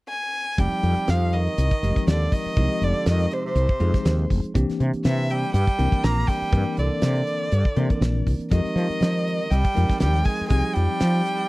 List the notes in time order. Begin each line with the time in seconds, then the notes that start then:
0.09 G#5
0.58 F1 F3 G3 C4 D#4 G4 G5, kick, closed hi-hat
0.71 closed hi-hat
0.83 F2, closed hi-hat
0.96 muted fretless electric bass stroke, closed hi-hat
1.08 F2 F3 F5, snare, closed hi-hat
1.33 D#3 D#5, closed hi-hat
1.47 closed hi-hat
1.58 C2, closed hi-hat
1.71 kick, closed hi-hat
1.83 F1 F3 G#3 C4 D#4 G4, closed hi-hat
1.96 kick, closed hi-hat
2.07 D#2 D5, snare, closed hi-hat
2.11 D3
2.32 D#3 D#5, kick, open hi-hat
2.46 muted fretless electric bass stroke
2.56 C2 F3 G#3 C4 D#4 G4, kick, closed hi-hat
2.81 F1 D3 D5, closed hi-hat
3.06 F2 D#3 D#5, snare, closed hi-hat
3.20 closed hi-hat
3.31 C3 C5, closed hi-hat
3.45 C3 C5
3.55 C2, closed hi-hat
3.69 kick
3.80 F2 F3 G#3 C4 D#4 G#4, closed hi-hat
3.94 muted fretless electric bass stroke, kick, snare, closed hi-hat
4.05 D#2, snare, closed hi-hat
4.30 F1, kick, open hi-hat
4.44 closed hi-hat
4.54 C2 E3 A#3 C4 D4 G4, kick, closed hi-hat
4.70 muted fretless electric bass stroke, snare, closed hi-hat
4.80 C3, closed hi-hat
4.93 muted fretless electric bass stroke, closed hi-hat
5.04 C3 E3 E5, snare, closed hi-hat
5.30 G3 G5, closed hi-hat
5.43 closed hi-hat
5.54 G2 G3 G5, closed hi-hat
5.67 kick, closed hi-hat
5.78 C2 E3 A#3 C4 D4 A#4, closed hi-hat
5.92 kick, closed hi-hat
6.04 A#1 A#3 A#5, snare, closed hi-hat
6.27 G3 G5, kick, open hi-hat
6.42 muted fretless electric bass stroke
6.52 G2 E3 A#3 C4 D4 A#4, kick, closed hi-hat
6.77 C2 D3 D5, closed hi-hat
7.02 C3, snare, closed hi-hat
7.16 closed hi-hat
7.27 closed hi-hat
7.52 G2, closed hi-hat
7.65 kick
7.76 C3 E3 A#3 C4 D4 A#4, closed hi-hat
7.90 muted fretless electric bass stroke, kick, closed hi-hat
8.01 A#1, snare, closed hi-hat
8.27 C2, kick, open hi-hat
8.39 muted fretless electric bass stroke, closed hi-hat
8.50 F2 D#3 F3 G#3 C4 D#4 G4 D#5, kick, closed hi-hat
8.65 muted fretless electric bass stroke, closed hi-hat
8.76 F3, closed hi-hat
8.89 muted fretless electric bass stroke, closed hi-hat
9.01 F3, snare, closed hi-hat
9.27 closed hi-hat
9.41 closed hi-hat
9.50 C2 G3 G5, closed hi-hat
9.65 kick, closed hi-hat
9.75 F2 F3 G#3 C4 D#4 A#4, closed hi-hat
9.89 kick, snare, closed hi-hat
10.00 D#2 G3 G5, snare, closed hi-hat
10.15 snare
10.23 G#3 G#5, kick, open hi-hat
10.41 muted fretless electric bass stroke
10.48 C2 F3 G3 G#3 C4 D#4 G4 G#5, kick, closed hi-hat
10.73 F2 G3 G5, closed hi-hat
11.00 F3, snare, closed hi-hat
11.14 closed hi-hat
11.26 closed hi-hat